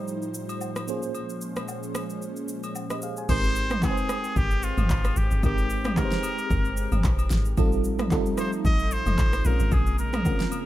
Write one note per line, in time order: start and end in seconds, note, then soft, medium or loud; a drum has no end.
0.00 0.86 A2 medium
0.00 3.25 F3 medium
0.00 0.86 G3 medium
0.00 0.84 A3 medium
0.00 0.84 D#4 medium
0.00 0.86 D#4 medium
0.00 0.85 F4 medium
0.00 0.85 G4 medium
0.00 0.85 C5 medium
0.00 3.25 C5 medium
0.08 shaker medium
0.22 shaker soft
0.34 shaker medium
0.49 high agogo medium
0.49 shaker soft
0.61 low woodblock medium
0.61 shaker medium
0.76 cross-stick medium
0.76 high agogo medium
0.76 shaker medium
0.87 3.27 A#2 medium
0.87 3.27 G#3 medium
0.87 2.98 A#3 medium
0.87 3.27 C#4 medium
0.87 2.98 C#4 medium
0.87 2.99 F4 medium
0.87 2.46 G#4 medium
0.87 2.47 C5 medium
0.87 shaker medium
1.03 shaker medium
1.15 high agogo medium
1.15 shaker medium
1.30 shaker soft
1.41 shaker medium
1.56 cross-stick medium
1.56 high agogo medium
1.56 shaker medium
1.68 low woodblock medium
1.68 shaker medium
1.83 shaker medium
1.95 cross-stick loud
1.95 high agogo medium
1.95 shaker medium
2.10 shaker soft
2.22 shaker medium
2.36 shaker soft
2.48 shaker medium
2.63 high agogo medium
2.63 shaker medium
2.75 low woodblock medium
2.75 shaker medium
2.90 3.02 G4 medium
2.90 3.02 D#5 medium
2.90 cross-stick medium
2.90 high agogo medium
2.90 shaker medium
3.02 3.17 G#4 medium
3.02 3.17 F5 medium
3.02 shaker medium
3.17 3.43 C5 medium
3.17 3.43 G#5 medium
3.17 shaker medium
3.29 4.05 G#1 loud
3.29 7.54 G#3 medium
3.29 3.73 G#3 medium
3.29 7.54 C4 medium
3.29 3.73 C4 medium
3.29 3.73 D#4 medium
3.29 3.74 G4 medium
3.29 3.74 A#4 medium
3.29 3.80 C5 loud
3.29 5.41 G5 medium
3.29 kick loud
3.29 crash medium
3.29 high agogo medium
3.29 shaker medium
3.44 shaker soft
3.56 shaker medium
3.71 cross-stick loud
3.71 mid tom loud
3.71 high agogo medium
3.71 shaker medium
3.82 4.69 G#3 medium
3.82 4.69 C4 medium
3.82 4.69 D#4 medium
3.82 4.39 G#4 loud
3.82 3.90 B4 medium
3.82 4.70 G5 medium
3.82 kick medium
3.82 clap medium
3.82 low woodblock medium
3.82 shaker medium
3.91 4.73 C5 medium
3.98 shaker medium
4.09 cross-stick loud
4.09 high agogo medium
4.09 shaker loud
4.24 shaker soft
4.36 4.74 G#1 medium
4.36 4.65 G4 loud
4.36 kick loud
4.36 shaker medium
4.51 shaker soft
4.63 5.19 F4 loud
4.63 shaker loud
4.78 4.89 G1 medium
4.78 mid tom medium
4.78 high agogo medium
4.78 shaker medium
4.90 5.14 G#1 loud
4.90 kick medium
4.90 clap medium
4.90 shaker medium
5.05 cross-stick medium
5.05 high agogo medium
5.05 shaker medium
5.16 5.30 G#1 medium
5.16 5.44 G4 medium
5.16 shaker medium
5.31 5.42 G1 medium
5.31 shaker medium
5.43 6.20 G#1 loud
5.43 5.87 G#3 medium
5.43 5.87 C4 medium
5.43 5.88 D#4 medium
5.43 7.55 G4 medium
5.43 5.99 G4 loud
5.43 5.88 G4 medium
5.43 5.88 A#4 medium
5.43 kick loud
5.43 high agogo medium
5.43 shaker medium
5.58 shaker medium
5.70 shaker medium
5.85 cross-stick loud
5.85 mid tom loud
5.85 high agogo medium
5.85 shaker medium
5.97 6.83 G#3 medium
5.97 6.83 C4 medium
5.97 6.84 D#4 medium
5.97 6.84 G4 medium
5.97 7.31 A#4 loud
5.97 6.05 B4 medium
5.97 kick medium
5.97 clap medium
5.97 low woodblock medium
5.97 shaker medium
6.05 6.87 C5 medium
6.11 snare medium
6.11 shaker medium
6.23 high agogo medium
6.23 shaker loud
6.38 shaker soft
6.51 6.88 G1 loud
6.51 kick loud
6.51 shaker medium
6.65 shaker soft
6.77 shaker medium
6.92 7.03 G1 medium
6.92 mid tom medium
6.92 high agogo medium
6.92 shaker medium
7.04 7.28 A#1 loud
7.04 kick medium
7.04 clap loud
7.04 shaker medium
7.19 high agogo medium
7.19 shaker medium
7.30 7.55 G#1 loud
7.30 snare medium
7.30 shaker medium
7.45 shaker medium
7.57 8.34 A1 loud
7.57 9.43 F3 medium
7.57 8.02 G3 medium
7.57 9.43 A3 medium
7.57 8.02 C4 medium
7.57 9.43 D#4 medium
7.57 8.02 D#4 medium
7.57 8.02 F4 medium
7.57 8.02 A4 loud
7.57 kick loud
7.57 high agogo medium
7.57 shaker medium
7.72 shaker soft
7.84 shaker medium
7.99 cross-stick loud
7.99 mid tom medium
7.99 high agogo medium
7.99 shaker medium
8.11 8.97 G3 medium
8.11 8.98 C4 medium
8.11 8.98 D#4 medium
8.11 8.98 F4 medium
8.11 8.98 A4 loud
8.11 kick medium
8.11 clap medium
8.11 low woodblock medium
8.11 shaker medium
8.26 shaker medium
8.37 8.51 C5 medium
8.37 cross-stick medium
8.37 high agogo medium
8.37 shaker loud
8.53 shaker soft
8.65 9.02 A1 loud
8.65 8.94 D#5 loud
8.65 kick loud
8.65 shaker medium
8.79 shaker soft
8.91 9.48 C5 loud
8.91 shaker medium
9.06 9.17 F1 medium
9.06 mid tom medium
9.06 high agogo medium
9.06 shaker medium
9.18 9.42 A1 loud
9.18 kick medium
9.18 clap loud
9.18 shaker medium
9.33 cross-stick medium
9.33 high agogo medium
9.33 shaker medium
9.45 9.58 A#1 loud
9.45 10.66 C#3 medium
9.45 10.66 G#3 medium
9.45 10.11 G#3 medium
9.45 10.66 A#3 medium
9.45 10.11 C4 medium
9.45 10.11 C#4 medium
9.45 10.11 F4 medium
9.45 9.74 A#4 medium
9.45 10.11 A#4 medium
9.45 shaker medium
9.60 9.71 G#1 medium
9.60 shaker medium
9.72 10.48 A#1 loud
9.72 9.99 G#4 loud
9.72 kick loud
9.72 high agogo medium
9.72 shaker medium
9.87 shaker soft
9.98 10.66 A#4 loud
9.98 shaker medium
10.13 cross-stick loud
10.13 mid tom loud
10.13 high agogo medium
10.13 shaker medium
10.25 10.66 G#3 medium
10.25 10.66 C4 medium
10.25 10.66 C#4 medium
10.25 10.66 F4 medium
10.25 10.66 A#4 medium
10.25 kick medium
10.25 low woodblock medium
10.25 shaker medium
10.40 snare medium
10.40 shaker medium
10.52 high agogo medium
10.52 shaker loud